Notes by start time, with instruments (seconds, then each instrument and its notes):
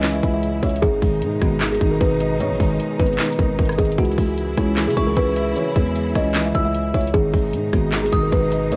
Already playing: 808-style bass C#2, string section C#3 E3 G#3 E4, felt piano E3 G#3 C#4 E4 E5, kalimba D#5, downlifter
0.03 felt piano E3, snare, clap, closed hi-hat
0.14 kalimba E5
0.23 808-style bass C#2, felt piano E4, kick, closed hi-hat
0.34 kalimba E5
0.43 closed hi-hat
0.63 808-style bass C#2, kalimba C#5, felt piano E5, kick, closed hi-hat
0.69 closed hi-hat
0.76 closed hi-hat
0.82 808-style bass G#1, string section B2 D#3 D#4, felt piano D#3, kalimba G#4, kick, closed hi-hat
1.02 808-style bass G#1, felt piano G#3, kick, open hi-hat
1.22 808-style bass G#2, closed hi-hat
1.42 808-style bass G#1, felt piano B3, kalimba F#4, kick, cross-stick, closed hi-hat
1.61 felt piano D#3, snare, clap, closed hi-hat
1.68 kalimba G#4, closed hi-hat
1.75 closed hi-hat
1.81 808-style bass G#1, felt piano D#4, kick, closed hi-hat
1.91 kalimba A#4
2.00 808-style bass G#1, kalimba B4, kick, closed hi-hat
2.20 felt piano D#5, closed hi-hat
2.40 808-style bass G#2, felt piano D#3, kalimba C#5, closed hi-hat
2.51 808-style bass G#1
2.60 808-style bass G#1, felt piano G#3, kick, open hi-hat
2.80 closed hi-hat
2.99 808-style bass G#1, felt piano B3, kalimba B4, kick, closed hi-hat
3.06 closed hi-hat
3.13 closed hi-hat
3.19 felt piano D#3, snare, clap, closed hi-hat
3.26 closed hi-hat
3.32 closed hi-hat
3.39 808-style bass G#1, felt piano D#4, kalimba A#4, kick, closed hi-hat
3.59 808-style bass G#1, kalimba A#4, kick, closed hi-hat
3.65 cross-stick, closed hi-hat
3.72 closed hi-hat
3.78 808-style bass G#1, kalimba G#4, felt piano D#5, kick, closed hi-hat
3.85 closed hi-hat
3.92 closed hi-hat
3.98 808-style bass C#2, string section C#3 E3 E4, felt piano E3, kalimba F#4, kick, closed hi-hat
4.05 closed hi-hat
4.11 closed hi-hat
4.18 808-style bass C#2, felt piano G#3, kick, open hi-hat
4.38 closed hi-hat
4.57 808-style bass C#2, felt piano C#4, kalimba E4, kick, cross-stick, closed hi-hat
4.77 felt piano E3, snare, clap, closed hi-hat
4.84 808-style bass C#3, kalimba G#4, closed hi-hat
4.90 closed hi-hat
4.97 808-style bass C#2, felt piano E4, synth bell C#6, kick, closed hi-hat
5.07 kalimba A#4
5.17 808-style bass C#2, kalimba B4, kick, closed hi-hat
5.36 felt piano E5, closed hi-hat
5.56 felt piano E3, kalimba C#5, closed hi-hat
5.76 808-style bass E2, felt piano G#3, kick, closed hi-hat
5.96 closed hi-hat
6.15 808-style bass C#2, felt piano C#4, kalimba D#5, kick, cross-stick, closed hi-hat
6.34 felt piano E3, snare, clap, closed hi-hat
6.46 kalimba E5
6.55 808-style bass C#2, felt piano E4, synth bell E6, kick, closed hi-hat
6.65 kalimba E5
6.75 closed hi-hat
6.94 808-style bass C#2, kalimba C#5, felt piano E5, kick, closed hi-hat
7.01 closed hi-hat
7.07 closed hi-hat
7.14 808-style bass G#1, string section B2 D#3 G#3 D#4, felt piano D#3, kalimba G#4, kick, closed hi-hat
7.34 808-style bass G#1, felt piano G#3, kick, open hi-hat
7.53 808-style bass G#2, closed hi-hat
7.73 808-style bass G#1, felt piano B3, kalimba F#4, kick, cross-stick, closed hi-hat
7.92 felt piano D#3, snare, clap, closed hi-hat
7.99 kalimba G#4, closed hi-hat
8.06 closed hi-hat
8.12 808-style bass G#1, felt piano D#4, synth bell D#6, kick, closed hi-hat
8.23 kalimba A#4
8.32 808-style bass G#1, kalimba B4, kick, closed hi-hat
8.52 felt piano D#5, closed hi-hat
8.71 808-style bass G#2, felt piano D#3, kalimba C#5, closed hi-hat